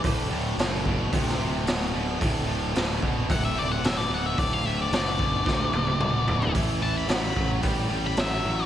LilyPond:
<<
  \new Staff \with { instrumentName = "Lead electric guitar" } { \time 4/4 \key d \mixolydian \tempo 4 = 110 r1 | r2 fis''16 e''16 d''16 fis''16 e''16 d''16 fis''16 e''16 | d''16 f''16 e''16 d''16 d''2. | r8 a''16 b''4 r4 b''16 e''4 | }
  \new Staff \with { instrumentName = "Distorted electric guitar" } { \clef bass \time 4/4 \key d \mixolydian <d, a,>8 <d, a,>8 <d, b,>8 <d, b,>8 <d, c>8 <d, c>8 <d, b,>8 <d, b,>8 | <d, a,>8 <d, a,>8 <d, b,>8 <d, b,>8 <d, c>8 <d, c>8 <d, b,>8 <d, b,>8 | <d, a,>8 <d, a,>8 <d, b,>8 <d, b,>8 <d, c>8 <d, c>8 <d, b,>8 <d, b,>8 | <a, e>8 <a, e>8 <a, fis>8 <a, fis>8 <a, g>8 <a, g>8 <a, fis>8 <a, fis>8 | }
  \new Staff \with { instrumentName = "Fingered electric bass" } { \clef bass \time 4/4 \key d \mixolydian d,,8 d,,8 fis,,4 d,8 d,,8 d,,8 d,,8 | d,,4 d,,8 d,,8 d,,8 d,,8 d,,8 d,,8 | d,,8 d,,8 fis,,4 d,8 d,,8 d,,8 d,,8 | a,,4 a,,8 a,,8 a,,8 a,,8 a,,8 a,,8 | }
  \new DrumStaff \with { instrumentName = "Drums" } \drummode { \time 4/4 <hho bd>4 <hho sn>8 bd8 <hho bd>16 sn8. <hho sn>4 | <hho bd>4 <hho sn>8 bd8 <hho bd>4 <hho sn>4 | <hho bd>4 <hho sn>8 bd8 <bd sn>8 tommh16 tommh16 toml8 tomfh16 tomfh16 | <hho bd>4 <hho sn>8 bd8 <hho bd>4 <hho sn>4 | }
>>